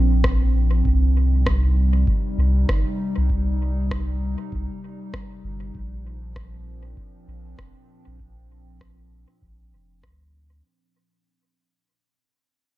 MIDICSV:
0, 0, Header, 1, 4, 480
1, 0, Start_track
1, 0, Tempo, 612245
1, 665, Time_signature, 4, 2, 24, 8
1, 10016, End_track
2, 0, Start_track
2, 0, Title_t, "Ambient pad"
2, 0, Program_c, 0, 92
2, 0, Note_on_c, 0, 46, 79
2, 0, Note_on_c, 0, 53, 79
2, 0, Note_on_c, 0, 60, 91
2, 0, Note_on_c, 0, 62, 82
2, 664, Note_off_c, 0, 46, 0
2, 666, Note_off_c, 0, 53, 0
2, 669, Note_off_c, 0, 62, 0
2, 674, Note_on_c, 0, 48, 77
2, 787, Note_on_c, 0, 55, 83
2, 943, Note_on_c, 0, 63, 83
2, 1742, Note_off_c, 0, 60, 0
2, 4503, Note_on_c, 0, 46, 82
2, 4507, Note_off_c, 0, 63, 0
2, 4509, Note_off_c, 0, 48, 0
2, 4510, Note_off_c, 0, 55, 0
2, 4551, Note_on_c, 0, 53, 92
2, 4898, Note_on_c, 0, 60, 76
2, 5110, Note_on_c, 0, 62, 63
2, 8344, Note_off_c, 0, 46, 0
2, 8346, Note_off_c, 0, 62, 0
2, 8348, Note_off_c, 0, 53, 0
2, 8348, Note_off_c, 0, 60, 0
2, 10016, End_track
3, 0, Start_track
3, 0, Title_t, "Sub bass"
3, 0, Program_c, 1, 38
3, 0, Note_on_c, 1, 34, 89
3, 648, Note_off_c, 1, 34, 0
3, 668, Note_on_c, 1, 36, 94
3, 1607, Note_off_c, 1, 36, 0
3, 1866, Note_on_c, 1, 36, 83
3, 2081, Note_off_c, 1, 36, 0
3, 2108, Note_on_c, 1, 31, 94
3, 2230, Note_off_c, 1, 31, 0
3, 2488, Note_on_c, 1, 36, 87
3, 3419, Note_off_c, 1, 36, 0
3, 3547, Note_on_c, 1, 36, 91
3, 3669, Note_off_c, 1, 36, 0
3, 4266, Note_on_c, 1, 31, 87
3, 4481, Note_off_c, 1, 31, 0
3, 4508, Note_on_c, 1, 34, 95
3, 5447, Note_off_c, 1, 34, 0
3, 5706, Note_on_c, 1, 34, 79
3, 5921, Note_off_c, 1, 34, 0
3, 5947, Note_on_c, 1, 29, 87
3, 6069, Note_off_c, 1, 29, 0
3, 6325, Note_on_c, 1, 34, 88
3, 7258, Note_off_c, 1, 34, 0
3, 7388, Note_on_c, 1, 34, 85
3, 7624, Note_on_c, 1, 29, 75
3, 7636, Note_off_c, 1, 34, 0
3, 7867, Note_on_c, 1, 38, 72
3, 7878, Note_off_c, 1, 29, 0
3, 8326, Note_off_c, 1, 38, 0
3, 10016, End_track
4, 0, Start_track
4, 0, Title_t, "Drums"
4, 188, Note_on_c, 9, 36, 101
4, 189, Note_on_c, 9, 37, 73
4, 266, Note_off_c, 9, 36, 0
4, 267, Note_off_c, 9, 37, 0
4, 668, Note_on_c, 9, 36, 93
4, 746, Note_off_c, 9, 36, 0
4, 1147, Note_on_c, 9, 36, 92
4, 1149, Note_on_c, 9, 37, 66
4, 1226, Note_off_c, 9, 36, 0
4, 1227, Note_off_c, 9, 37, 0
4, 1626, Note_on_c, 9, 36, 95
4, 1705, Note_off_c, 9, 36, 0
4, 2107, Note_on_c, 9, 36, 98
4, 2109, Note_on_c, 9, 37, 69
4, 2185, Note_off_c, 9, 36, 0
4, 2187, Note_off_c, 9, 37, 0
4, 2586, Note_on_c, 9, 36, 93
4, 2665, Note_off_c, 9, 36, 0
4, 3067, Note_on_c, 9, 36, 88
4, 3068, Note_on_c, 9, 37, 67
4, 3145, Note_off_c, 9, 36, 0
4, 3147, Note_off_c, 9, 37, 0
4, 3546, Note_on_c, 9, 36, 93
4, 3625, Note_off_c, 9, 36, 0
4, 4026, Note_on_c, 9, 36, 91
4, 4027, Note_on_c, 9, 37, 66
4, 4105, Note_off_c, 9, 36, 0
4, 4106, Note_off_c, 9, 37, 0
4, 4507, Note_on_c, 9, 36, 87
4, 4585, Note_off_c, 9, 36, 0
4, 4986, Note_on_c, 9, 36, 89
4, 4987, Note_on_c, 9, 37, 65
4, 5065, Note_off_c, 9, 36, 0
4, 5065, Note_off_c, 9, 37, 0
4, 5466, Note_on_c, 9, 36, 88
4, 5545, Note_off_c, 9, 36, 0
4, 5946, Note_on_c, 9, 36, 86
4, 5948, Note_on_c, 9, 37, 67
4, 6025, Note_off_c, 9, 36, 0
4, 6026, Note_off_c, 9, 37, 0
4, 6427, Note_on_c, 9, 36, 92
4, 6505, Note_off_c, 9, 36, 0
4, 6907, Note_on_c, 9, 36, 88
4, 6907, Note_on_c, 9, 37, 65
4, 6985, Note_off_c, 9, 36, 0
4, 6985, Note_off_c, 9, 37, 0
4, 7386, Note_on_c, 9, 36, 90
4, 7465, Note_off_c, 9, 36, 0
4, 7867, Note_on_c, 9, 36, 89
4, 7867, Note_on_c, 9, 37, 66
4, 7945, Note_off_c, 9, 36, 0
4, 7946, Note_off_c, 9, 37, 0
4, 10016, End_track
0, 0, End_of_file